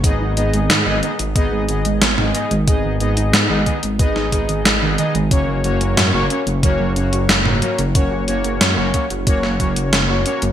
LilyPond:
<<
  \new Staff \with { instrumentName = "Analog polysynth" } { \time 4/4 \key fis \major \tempo 4 = 91 <b dis' gis' dis''>8 <b dis' gis' dis''>8. <b dis' gis' dis''>16 <b dis' gis' dis''>16 r16 <b dis' gis' dis''>8 <b dis' gis' dis''>8. <b dis' gis' dis''>16 <b dis' gis' dis''>16 r16 | <b dis' gis' dis''>8 <b dis' gis' dis''>8. <b dis' gis' dis''>16 <b dis' gis' dis''>16 r16 <b dis' gis' dis''>8 <b dis' gis' dis''>8. <b dis' gis' dis''>16 <b dis' gis' dis''>16 r16 | <ais cis' fis' cis''>8 <ais cis' fis' cis''>8. <ais cis' fis' cis''>16 <ais cis' fis' cis''>16 r16 <ais cis' fis' cis''>8 <ais cis' fis' cis''>8. <ais cis' fis' cis''>16 <ais cis' fis' cis''>16 r16 | <ais cis' fis' cis''>8 <ais cis' fis' cis''>8. <ais cis' fis' cis''>16 <ais cis' fis' cis''>16 r16 <ais cis' fis' cis''>8 <ais cis' fis' cis''>8. <ais cis' fis' cis''>16 <ais cis' fis' cis''>16 r16 | }
  \new Staff \with { instrumentName = "Synth arpeggio sound" } { \time 4/4 \key fis \major b16 dis'16 b16 gis16 dis16 dis16 b16 dis'16 b16 gis16 dis16 gis16 b16 dis'16 b16 gis16 | dis16 dis16 b16 dis'16 b16 gis16 dis16 gis16 b16 dis'16 gis'16 dis16 gis16 dis16 dis16 dis16 | cis'16 ais16 fis16 ais16 cis'16 fis'16 cis'16 ais16 fis16 fis16 cis'16 fis'16 cis'16 ais16 fis16 ais16 | cis'16 fis'16 cis'16 ais16 fis16 fis16 cis'16 fis'16 cis'16 ais16 fis16 ais16 cis'16 fis'16 cis'16 ais16 | }
  \new Staff \with { instrumentName = "Detuned saw bass" } { \clef bass \time 4/4 \key fis \major gis,,16 gis,,16 gis,,16 gis,,16 gis,16 gis,,16 r16 gis,,16 gis,,16 gis,,16 gis,,16 gis,,16 gis,,16 gis,,16 r16 gis,,16 | gis,,16 gis,,16 gis,,16 gis,,16 gis,16 gis,,16 r16 gis,,16 gis,,16 gis,,16 gis,,16 gis,,16 gis,,16 gis,,16 r16 gis,,16 | fis,,16 fis,,16 fis,,16 fis,,16 fis,16 fis,,16 r16 fis,,16 fis,,16 fis,,16 fis,,16 fis,,16 fis,,16 fis,,16 r16 fis,,16 | fis,,16 fis,,16 fis,,16 fis,,16 fis,16 fis,,16 r16 fis,,16 fis,,16 fis,,16 fis,,16 fis,,16 fis,,16 fis,,16 r16 fis,,16 | }
  \new DrumStaff \with { instrumentName = "Drums" } \drummode { \time 4/4 <hh bd>8 hh16 hh16 <hh sn toml>8 hh16 hh16 <hh bd>8 hh16 hh16 <hh sn>16 toml16 hh16 hh16 | <hh bd>8 hh16 hh16 <hh sn>8 <hh bd>16 hh16 <hh bd>16 sn16 <hh bd>16 hh16 <hh sn>8 hh16 hh16 | <hh bd>8 hh16 hh16 <hh sn toml>8 hh16 hh16 <hh bd>8 hh16 hh16 <hh sn>16 toml16 hh16 hh16 | <hh bd>8 hh16 hh16 <hh sn>8 <hh bd>16 hh16 <hh bd>16 sn16 <hh bd>16 hh16 <hh sn>8 hh16 hh16 | }
>>